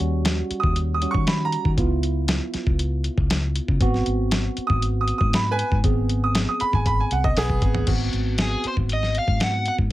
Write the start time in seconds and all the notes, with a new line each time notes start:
Already playing: G3 C#4 F#4
0.00 D#2, closed hi-hat
0.25 snare, closed hi-hat
0.51 muted fingered electric bass stroke, closed hi-hat
0.60 D#2 D#6, kick
0.76 closed hi-hat
0.94 D#6
1.02 G3 C#4 F#4, closed hi-hat
1.11 D#3 C#6, kick
1.27 B5, snare, closed hi-hat
1.45 A#5
1.52 closed hi-hat
1.65 D#3, kick
1.78 C#2 B3 E4 F4, kick, closed hi-hat
2.03 closed hi-hat
2.28 snare, closed hi-hat
2.54 muted fingered electric bass stroke, snare, closed hi-hat
2.67 C#2, kick
2.79 closed hi-hat
3.04 closed hi-hat
3.18 C#2, kick
3.30 snare, closed hi-hat
3.56 closed hi-hat
3.68 C#3, kick
3.81 G#1 B3 C4 F#4, kick, closed hi-hat
3.94 snare
4.06 G#1, closed hi-hat
4.31 snare, closed hi-hat
4.57 muted fingered electric bass stroke, closed hi-hat
4.67 G#1 D#6, kick
4.82 closed hi-hat
5.01 D#6
5.08 closed hi-hat
5.18 G#2 D#6, kick
5.33 B5, snare, closed hi-hat
5.51 B4 G#5
5.59 closed hi-hat
5.72 G#2, kick
5.84 G#1 B3 C4 G#4, kick, closed hi-hat
6.09 closed hi-hat
6.24 D#6
6.35 snare, closed hi-hat
6.49 D#6
6.60 B5, muted fingered electric bass stroke, closed hi-hat
6.73 G#1 G#5, kick
6.86 B5, kick, closed hi-hat
7.00 G#5
7.11 C2 F#5, closed hi-hat
7.24 D#5, kick
7.37 B1 B3 G#4, snare, closed hi-hat
7.50 kick
7.62 G#1 B3 C4 G#4, kick, closed hi-hat
7.75 floor tom
7.87 G#1 B3 C4 F#4, kick, closed hi-hat, crash
8.13 G#1, closed hi-hat
8.38 G#4, snare, closed hi-hat
8.64 muted fingered electric bass stroke, closed hi-hat
8.68 C5
8.77 G#1, kick
8.89 D#5, closed hi-hat
9.03 snare
9.15 F5, closed hi-hat
9.28 G#2, kick
9.40 F#5, snare, closed hi-hat
9.66 F#5, closed hi-hat
9.79 G#2, kick